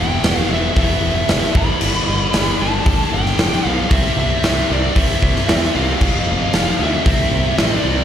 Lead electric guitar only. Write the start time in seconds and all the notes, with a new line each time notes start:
0.00 G5
0.53 E5
0.79 E5
1.57 B5
2.62 A5
3.14 G5
3.68 F5
3.93 E5
4.19 E5
4.73 D5
4.98 E5
5.76 F5
6.83 E5
7.61 D5